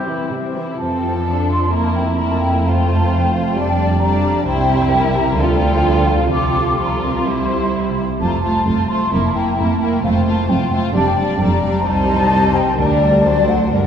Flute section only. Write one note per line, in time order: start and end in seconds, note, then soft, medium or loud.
0.78 1.44 A5 medium
1.49 1.72 C6 soft
1.70 1.83 A#5 soft
1.83 1.95 A5 soft
1.94 2.00 G5 soft
2.17 2.29 A#5 soft
2.29 2.41 A5 soft
2.41 2.65 G5 soft
2.65 2.70 F5 medium
2.77 2.88 G5 soft
2.89 3.11 A5 medium
3.11 3.33 G5 medium
3.33 3.56 F5 medium
3.56 3.67 A5 medium
3.68 3.79 G5 soft
3.79 4.01 A5 medium
4.01 4.47 A#5 medium
4.47 5.14 G5 medium
5.16 5.38 A#5 medium
5.39 5.50 A5 medium
5.51 6.08 G5 medium
6.08 6.32 F5 medium
6.32 6.78 D6 medium
6.80 6.87 C6 soft
6.87 6.94 A#5 soft
6.95 7.74 C6 soft
8.20 8.27 A5 medium
8.27 8.34 A#5 soft
8.34 8.90 A5 medium
8.90 9.13 C6 medium
9.13 9.19 A#5 medium
9.24 9.30 A5 soft
9.35 9.58 G5 medium
9.58 9.63 A#5 medium
9.70 9.82 A5 soft
9.82 9.88 G5 medium
10.04 10.09 F5 medium
10.15 10.21 G5 medium
10.28 10.50 A5 medium
10.50 10.73 G5 medium
10.73 10.96 F5 medium
10.96 11.07 A5 medium
11.07 11.18 G5 medium
11.18 11.41 A5 medium
11.40 11.86 A#5 medium
11.85 12.54 A5 medium
12.55 12.78 G5 medium
12.79 13.48 D5 medium
13.49 13.72 F#5 medium
13.73 13.87 F#5 medium